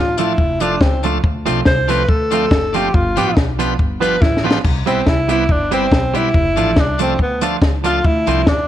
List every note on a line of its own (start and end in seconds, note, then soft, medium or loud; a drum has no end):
0.00 0.32 A1 medium
0.00 0.19 F4 medium
0.17 0.34 F3 medium
0.17 0.35 A3 medium
0.17 0.33 D4 medium
0.17 0.35 D4 medium
0.17 0.62 E4 medium
0.17 0.33 F4 medium
0.17 0.35 F4 loud
0.17 0.33 A4 loud
0.17 closed hi-hat loud
0.38 0.75 F1 medium
0.38 kick loud
0.60 0.77 F3 medium
0.60 0.77 A3 medium
0.60 0.83 D4 medium
0.60 0.76 D4 medium
0.60 0.77 D4 medium
0.60 0.76 F4 medium
0.60 0.78 F4 medium
0.60 0.76 A4 loud
0.60 closed hi-hat loud
0.81 1.17 C#2 medium
0.81 1.04 C4 medium
0.81 kick loud
0.81 snare loud
1.03 1.19 F3 medium
1.03 1.20 A3 medium
1.03 1.18 D4 loud
1.03 1.20 D4 medium
1.03 1.18 F4 medium
1.03 1.20 F4 medium
1.03 1.18 A4 loud
1.03 closed hi-hat medium
1.24 1.43 D2 loud
1.24 kick loud
1.46 1.63 B1 medium
1.46 1.61 F3 medium
1.46 1.62 A3 loud
1.46 1.62 C4 loud
1.46 1.61 D4 medium
1.46 1.61 F4 medium
1.46 1.62 F4 loud
1.46 1.61 C5 loud
1.46 closed hi-hat medium
1.65 2.03 C2 loud
1.65 1.91 C5 loud
1.65 kick loud
1.65 snare loud
1.88 2.04 F3 medium
1.88 2.05 A3 loud
1.88 2.05 C4 medium
1.88 2.03 D4 medium
1.88 2.03 F4 medium
1.88 2.05 F4 loud
1.88 2.10 B4 loud
1.88 2.03 C5 loud
1.88 closed hi-hat loud
2.09 2.45 D2 loud
2.09 2.76 A4 loud
2.09 muted clean electric guitar stroke soft
2.09 kick loud
2.31 2.47 F3 medium
2.31 2.48 A3 medium
2.31 2.48 C4 medium
2.31 2.46 D4 medium
2.31 2.46 F4 medium
2.31 2.48 F4 medium
2.31 2.46 C5 loud
2.31 closed hi-hat loud
2.51 2.88 F#1 loud
2.51 kick loud
2.51 snare loud
2.73 2.90 F3 medium
2.73 2.90 A3 loud
2.73 2.90 C4 medium
2.73 2.88 D4 medium
2.73 2.88 F4 medium
2.73 2.91 F4 loud
2.73 2.96 G4 medium
2.73 2.89 C5 loud
2.73 closed hi-hat medium
2.94 3.13 G1 loud
2.94 3.17 F4 medium
2.94 kick loud
3.16 3.37 A1 medium
3.16 3.32 F3 medium
3.16 3.33 B3 medium
3.16 3.33 D4 medium
3.16 3.31 F4 loud
3.16 3.33 F4 loud
3.16 3.31 G4 medium
3.16 3.36 G4 medium
3.16 3.31 B4 loud
3.16 closed hi-hat loud
3.37 3.73 B1 loud
3.37 kick loud
3.37 snare loud
3.59 3.74 F3 medium
3.59 3.75 B3 loud
3.59 3.75 D4 loud
3.59 3.74 F4 medium
3.59 3.75 F4 medium
3.59 3.74 G4 medium
3.59 3.74 B4 loud
3.59 closed hi-hat loud
3.79 4.15 G1 loud
3.79 kick loud
4.00 4.17 F3 medium
4.00 4.17 B3 medium
4.00 4.17 D4 medium
4.00 4.16 F4 loud
4.00 4.17 F4 medium
4.00 4.16 G4 medium
4.00 4.23 B4 loud
4.00 4.17 B4 loud
4.00 closed hi-hat loud
4.22 4.58 A1 loud
4.22 4.44 E4 medium
4.22 kick loud
4.22 snare medium
4.37 snare medium
4.44 4.60 F3 medium
4.44 4.60 B3 medium
4.44 4.60 D4 loud
4.44 4.59 F4 loud
4.44 4.61 F4 loud
4.44 4.59 G4 medium
4.44 4.59 B4 loud
4.51 snare loud
4.64 4.84 C2 loud
4.64 kick loud
4.64 crash loud
4.86 5.04 B1 medium
4.86 5.02 G3 medium
4.86 5.02 B3 medium
4.86 5.01 C4 medium
4.86 5.10 C4 medium
4.86 5.01 E4 medium
4.86 5.02 E4 medium
4.86 5.03 G4 loud
4.86 5.02 B4 loud
4.86 closed hi-hat medium
5.06 5.51 C2 medium
5.06 5.30 E4 loud
5.06 kick loud
5.06 snare loud
5.28 5.44 G3 medium
5.28 5.45 B3 medium
5.28 5.44 C4 medium
5.28 5.45 E4 medium
5.28 5.44 E4 medium
5.28 5.53 E4 loud
5.28 5.45 G4 medium
5.28 5.44 B4 loud
5.28 closed hi-hat loud
5.49 5.85 G1 medium
5.49 5.73 D4 loud
5.49 kick loud
5.71 5.87 G3 medium
5.71 5.87 B3 medium
5.71 5.86 C4 medium
5.71 6.18 C4 loud
5.71 5.87 E4 medium
5.71 5.88 E4 medium
5.71 5.88 G4 medium
5.71 5.87 B4 loud
5.71 closed hi-hat loud
5.92 6.28 B1 medium
5.92 kick loud
5.92 snare loud
6.14 6.29 G3 medium
6.14 6.30 B3 medium
6.14 6.29 C4 medium
6.14 6.29 E4 medium
6.14 6.30 E4 medium
6.14 6.81 E4 loud
6.14 6.30 G4 medium
6.14 6.29 B4 loud
6.14 closed hi-hat medium
6.34 6.57 F1 loud
6.34 kick loud
6.56 6.74 A1 medium
6.56 6.73 F3 medium
6.56 6.73 A3 medium
6.56 6.71 D4 medium
6.56 6.73 D4 medium
6.56 6.71 F4 medium
6.56 6.73 F4 medium
6.56 6.72 A4 loud
6.56 closed hi-hat medium
6.76 7.13 C2 medium
6.76 7.01 D4 medium
6.76 kick loud
6.76 snare loud
6.98 7.15 F3 medium
6.98 7.15 A3 medium
6.98 7.19 C4 medium
6.98 7.13 D4 loud
6.98 7.16 D4 medium
6.98 7.14 F4 medium
6.98 7.16 F4 medium
6.98 7.14 A4 loud
6.98 closed hi-hat loud
7.19 7.55 D2 medium
7.19 7.42 B3 medium
7.19 kick loud
7.41 7.57 F3 medium
7.41 7.58 A3 medium
7.41 7.56 D4 medium
7.41 7.58 D4 loud
7.41 7.57 F4 medium
7.41 7.58 F4 loud
7.41 7.57 A4 loud
7.41 closed hi-hat loud
7.62 7.98 C#2 loud
7.62 kick loud
7.62 snare loud
7.84 8.00 F3 medium
7.84 8.00 A3 medium
7.84 7.99 D4 loud
7.84 8.00 D4 loud
7.84 7.99 F4 medium
7.84 8.01 F4 loud
7.84 8.08 F4 loud
7.84 8.00 A4 loud
7.84 closed hi-hat medium
8.04 8.24 D2 loud
8.04 8.50 E4 loud
8.04 kick loud
8.27 8.44 C2 medium
8.27 8.43 F3 loud
8.27 8.43 A3 loud
8.27 8.43 C4 loud
8.27 8.42 D4 loud
8.27 8.42 F4 medium
8.27 8.44 F4 loud
8.27 8.42 C5 loud
8.27 closed hi-hat medium
8.47 8.68 D4 loud
8.47 kick loud
8.47 snare loud